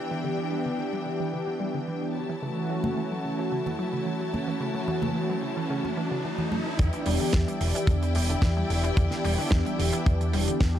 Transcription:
0.00 0.21 E3 medium
0.00 2.11 E3 medium
0.00 0.21 B3 medium
0.00 0.22 D4 medium
0.00 2.11 D4 medium
0.00 0.22 G4 medium
0.00 2.11 G5 medium
0.11 0.16 E3 medium
0.24 0.33 D3 loud
0.24 1.03 E3 medium
0.24 1.03 B3 medium
0.24 1.03 D4 medium
0.24 1.04 G4 loud
0.38 0.44 E3 medium
0.51 0.65 G3 medium
0.66 0.78 D3 medium
0.79 0.88 E3 medium
0.93 1.06 G3 medium
1.05 1.15 D3 medium
1.05 2.13 E3 medium
1.05 2.14 B3 medium
1.05 2.14 D4 medium
1.05 2.14 G4 medium
1.20 1.25 E3 medium
1.33 1.43 D3 medium
1.47 1.53 E3 medium
1.60 1.74 G3 medium
1.75 1.87 D3 medium
1.88 1.97 E3 medium
2.02 2.15 G3 medium
2.15 2.25 C#3 medium
2.15 6.75 F#3 medium
2.15 6.75 E4 medium
2.15 6.75 A5 medium
2.29 2.35 E3 medium
2.42 2.52 C#3 medium
2.42 3.21 E3 medium
2.42 3.21 A3 medium
2.42 3.22 C#4 medium
2.42 3.22 F#4 loud
2.42 riser medium
2.57 2.62 E3 medium
2.70 2.83 F#3 medium
2.84 2.97 C#3 medium
2.84 high conga medium
2.97 3.06 E3 medium
3.12 3.24 F#3 medium
3.23 3.34 C#3 medium
3.23 4.57 E3 medium
3.23 4.58 A3 medium
3.23 4.58 C#4 medium
3.23 4.58 F#4 medium
3.39 3.44 E3 medium
3.52 3.61 C#3 loud
3.66 3.71 E3 medium
3.66 high conga medium
3.66 low conga medium
3.79 3.93 F#3 medium
3.93 4.06 C#3 medium
4.06 4.15 E3 medium
4.20 4.33 F#3 medium
4.33 4.43 C#3 medium
4.33 high conga medium
4.33 low conga medium
4.47 4.53 E3 loud
4.60 4.70 C#3 loud
4.60 5.39 E3 medium
4.60 5.39 A3 medium
4.60 5.40 C#4 medium
4.60 5.40 F#4 medium
4.75 4.80 E3 medium
4.88 5.02 F#3 loud
4.88 low conga medium
5.02 5.15 C#3 medium
5.02 high conga medium
5.02 low conga medium
5.15 5.25 E3 medium
5.30 5.42 F#3 medium
5.42 5.52 C#3 medium
5.42 6.36 E3 medium
5.42 6.36 A3 medium
5.42 6.37 C#4 medium
5.42 6.37 F#4 medium
5.57 5.62 E3 medium
5.70 5.79 C#3 loud
5.84 5.89 E3 medium
5.84 high conga medium
5.97 6.06 E3 loud
6.11 6.24 C#3 medium
6.25 6.34 E3 medium
6.38 6.52 E3 medium
6.38 6.47 E3 medium
6.38 6.52 A3 medium
6.38 6.53 C#4 medium
6.38 6.53 A4 medium
6.38 low conga medium
6.52 6.61 F#3 medium
6.52 high conga medium
6.66 6.74 E3 medium
6.79 6.89 E2 medium
6.79 6.88 D3 loud
6.79 7.58 E3 loud
6.79 7.58 B3 medium
6.79 7.58 D4 medium
6.79 10.79 E4 medium
6.79 7.59 G4 loud
6.79 10.79 D5 medium
6.79 10.79 G5 medium
6.79 kick loud
6.79 closed hi-hat medium
6.93 6.98 E3 medium
6.93 closed hi-hat medium
7.06 7.16 E1 medium
7.06 7.20 G3 loud
7.06 open hi-hat loud
7.20 7.33 D3 medium
7.33 7.44 E2 loud
7.33 7.43 E3 medium
7.33 kick medium
7.33 snare loud
7.33 closed hi-hat medium
7.48 7.60 G3 medium
7.48 closed hi-hat medium
7.60 7.70 E1 loud
7.60 7.70 D3 medium
7.60 8.94 E3 medium
7.60 8.94 B3 medium
7.60 8.95 D4 medium
7.60 8.95 G4 medium
7.60 open hi-hat loud
7.75 7.80 E3 loud
7.75 closed hi-hat medium
7.87 8.17 E2 medium
7.87 7.97 D3 loud
7.87 kick loud
7.87 closed hi-hat medium
8.03 8.08 E3 medium
8.03 closed hi-hat medium
8.15 8.34 E1 medium
8.15 8.29 G3 loud
8.15 open hi-hat loud
8.30 8.42 D3 medium
8.30 closed hi-hat medium
8.42 8.61 E2 medium
8.42 8.52 E3 medium
8.42 kick loud
8.42 snare loud
8.42 closed hi-hat loud
8.57 8.69 G3 medium
8.70 8.89 E1 loud
8.70 8.79 D3 medium
8.70 open hi-hat loud
8.84 8.89 E3 loud
8.84 closed hi-hat medium
8.96 9.07 E2 loud
8.96 9.06 D3 loud
8.96 9.76 E3 loud
8.96 9.76 B3 medium
8.96 9.76 D4 medium
8.96 9.77 G4 loud
8.96 kick loud
8.96 closed hi-hat medium
9.11 9.16 E3 medium
9.11 snare soft
9.11 closed hi-hat soft
9.24 9.34 E1 medium
9.24 9.38 G3 loud
9.24 open hi-hat loud
9.38 9.51 D3 medium
9.38 muted fingered electric bass stroke soft
9.51 9.62 E2 loud
9.51 9.61 E3 medium
9.51 kick loud
9.51 snare loud
9.66 9.78 G3 medium
9.66 closed hi-hat soft
9.79 9.89 E1 loud
9.79 9.88 D3 medium
9.79 10.79 E3 medium
9.79 10.79 B3 medium
9.79 10.79 D4 medium
9.79 10.79 G4 medium
9.79 open hi-hat loud
9.93 9.98 E3 loud
9.93 closed hi-hat medium
10.06 10.35 E2 medium
10.06 10.15 D3 loud
10.06 kick loud
10.06 closed hi-hat medium
10.21 10.26 E3 medium
10.21 closed hi-hat medium
10.33 10.47 E1 medium
10.33 10.47 G3 loud
10.33 open hi-hat loud
10.48 10.60 D3 medium
10.48 muted fingered electric bass stroke soft
10.48 closed hi-hat medium
10.61 10.79 E2 medium
10.61 10.70 E3 medium
10.61 kick loud
10.61 snare loud
10.61 closed hi-hat medium
10.75 10.79 G3 medium

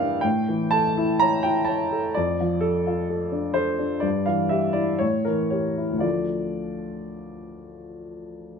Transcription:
0.00 0.21 G2 medium
0.00 0.27 E3 soft
0.00 0.27 D4 soft
0.00 0.26 E4 soft
0.00 0.27 A#4 soft
0.00 0.27 D5 medium
0.00 0.27 E5 medium
0.00 0.23 F5 medium
0.00 0.21 G5 medium
0.21 2.11 A2 medium
0.21 0.71 G5 medium
0.49 0.87 E3 soft
0.71 1.11 A4 soft
0.71 1.19 A5 medium
0.97 1.35 E4 soft
1.20 1.59 C#5 soft
1.20 1.44 A#5 medium
1.43 1.82 E4 soft
1.43 1.67 G5 medium
1.65 2.06 C#5 soft
1.65 2.14 A5 medium
1.92 2.16 A4 soft
2.14 4.01 F2 soft
2.14 2.63 D5 medium
2.40 2.78 F3 soft
2.61 3.08 A4 medium
2.87 3.24 F4 soft
3.10 3.47 A4 soft
3.32 3.70 D4 soft
3.54 3.94 A4 soft
3.54 4.02 C5 medium
3.79 4.03 D4 soft
4.00 4.98 G2 soft
4.00 4.26 D5 medium
4.26 4.66 E3 soft
4.26 4.51 F5 medium
4.49 4.91 G4 soft
4.49 4.75 E5 medium
4.73 5.01 E4 soft
4.73 5.00 D5 medium
4.99 6.00 A2 soft
4.99 5.25 C#5 medium
5.25 5.67 E3 soft
5.25 5.51 A#4 soft
5.50 5.93 G4 soft
5.50 6.03 C#5 soft
5.77 6.03 E4 soft
5.92 8.60 D2 soft
5.99 8.60 F3 soft
5.99 8.60 A3 soft
5.99 8.60 F4 soft
5.99 8.60 D5 medium

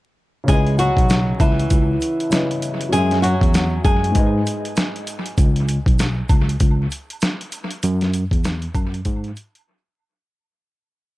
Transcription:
0.44 2.26 C#3 medium
0.44 2.27 C#4 medium
0.48 0.88 C#2 loud
0.48 0.76 G#3 medium
0.48 2.28 E4 medium
0.48 0.76 G#4 loud
0.48 2.29 B4 medium
0.48 kick loud
0.48 closed hi-hat medium
0.48 shaker medium
0.52 2.30 D#5 medium
0.67 closed hi-hat soft
0.78 1.37 F#3 medium
0.78 1.36 F#4 medium
0.78 closed hi-hat medium
0.78 shaker medium
0.97 1.32 B1 medium
0.97 kick medium
0.97 closed hi-hat medium
1.09 snare loud
1.09 closed hi-hat medium
1.09 shaker medium
1.40 1.65 C#2 medium
1.40 2.90 E3 medium
1.40 2.89 E4 medium
1.40 kick loud
1.40 closed hi-hat medium
1.40 high woodblock medium
1.40 shaker medium
1.59 closed hi-hat medium
1.70 1.96 C#2 medium
1.70 kick medium
1.70 closed hi-hat medium
1.70 shaker medium
2.01 closed hi-hat medium
2.01 shaker soft
2.20 closed hi-hat soft
2.30 2.92 C#3 medium
2.30 2.89 C#4 medium
2.30 2.93 E4 medium
2.30 2.94 B4 medium
2.30 snare loud
2.30 closed hi-hat medium
2.30 shaker medium
2.34 2.94 D#5 medium
2.51 closed hi-hat soft
2.62 closed hi-hat medium
2.62 shaker soft
2.81 closed hi-hat medium
2.88 4.11 F#3 medium
2.88 4.12 C#4 medium
2.88 3.20 G#4 loud
2.93 3.34 F#2 loud
2.93 3.21 G#3 medium
2.93 4.14 F#4 medium
2.93 4.13 G#4 medium
2.93 closed hi-hat medium
2.93 shaker medium
2.97 4.15 E5 medium
3.11 snare soft
3.11 closed hi-hat soft
3.22 3.81 F#3 medium
3.22 3.80 F#4 medium
3.22 closed hi-hat medium
3.22 shaker medium
3.41 3.77 E2 loud
3.41 kick medium
3.41 closed hi-hat medium
3.54 snare loud
3.54 closed hi-hat medium
3.54 shaker medium
3.85 4.10 F#2 medium
3.85 4.73 G#3 medium
3.85 4.73 G#4 medium
3.85 kick loud
3.85 closed hi-hat medium
3.85 high woodblock medium
3.85 shaker medium
4.04 closed hi-hat medium
4.10 5.33 G#2 medium
4.10 5.34 G#3 medium
4.14 4.41 G#2 loud
4.14 5.35 D#4 medium
4.14 5.36 B4 medium
4.14 kick medium
4.14 closed hi-hat medium
4.14 shaker medium
4.18 5.37 D#5 medium
4.46 closed hi-hat medium
4.46 shaker soft
4.65 closed hi-hat medium
4.76 snare loud
4.76 closed hi-hat medium
4.76 shaker medium
4.96 closed hi-hat soft
5.07 closed hi-hat medium
5.07 shaker medium
5.26 closed hi-hat medium
5.38 5.78 C#2 loud
5.38 kick loud
5.38 closed hi-hat medium
5.38 shaker medium
5.56 closed hi-hat soft
5.68 closed hi-hat medium
5.68 shaker medium
5.86 6.22 B1 medium
5.86 kick medium
5.86 closed hi-hat medium
5.99 snare loud
5.99 closed hi-hat medium
5.99 shaker medium
6.29 6.55 C#2 medium
6.29 kick loud
6.29 closed hi-hat medium
6.29 high woodblock medium
6.29 shaker medium
6.49 closed hi-hat medium
6.60 6.86 C#2 medium
6.60 kick medium
6.60 closed hi-hat medium
6.60 shaker medium
6.91 closed hi-hat medium
6.91 shaker soft
7.10 closed hi-hat medium
7.21 snare loud
7.21 closed hi-hat medium
7.21 shaker medium
7.41 closed hi-hat soft
7.52 closed hi-hat medium
7.52 shaker soft
7.71 closed hi-hat medium
7.83 8.23 F#2 loud
7.83 closed hi-hat medium
7.83 shaker medium
8.01 snare soft
8.01 closed hi-hat soft
8.13 closed hi-hat medium
8.13 shaker medium
8.31 8.67 E2 medium
8.31 kick medium
8.31 closed hi-hat medium
8.44 snare loud
8.44 closed hi-hat medium
8.44 shaker medium
8.62 closed hi-hat soft
8.75 9.00 F#2 medium
8.75 kick loud
8.75 closed hi-hat medium
8.75 high woodblock medium
8.75 shaker medium
8.94 closed hi-hat medium
9.05 9.31 G#2 loud
9.05 kick medium
9.05 closed hi-hat medium
9.05 shaker medium
9.24 closed hi-hat soft
9.36 closed hi-hat medium
9.36 shaker soft
9.55 closed hi-hat medium

